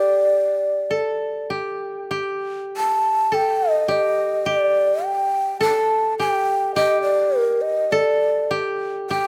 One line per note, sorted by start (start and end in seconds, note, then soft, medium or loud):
0.00 1.50 G4 medium
0.00 0.39 A4 medium
0.00 1.47 D5 medium
0.91 2.81 A4 medium
1.50 2.10 G4 medium
2.11 3.88 G4 medium
2.77 3.36 A5 medium
3.32 5.22 A4 medium
3.32 3.72 G5 medium
3.72 3.91 D#5 medium
3.88 4.46 G4 medium
3.88 4.47 D#5 medium
4.46 6.19 G4 medium
4.46 5.06 D5 medium
5.04 5.61 G5 medium
5.61 7.51 A4 medium
5.61 6.14 A5 medium
6.19 6.76 G4 medium
6.19 6.72 G5 medium
6.75 8.50 G4 medium
6.75 7.02 D#5 medium
7.02 7.40 D5 medium
7.40 7.63 A#4 medium
7.61 7.93 D#5 medium
7.91 9.27 A4 medium
7.91 8.51 D5 medium
8.51 9.10 G4 medium
9.10 9.27 G4 medium
9.10 9.27 G5 loud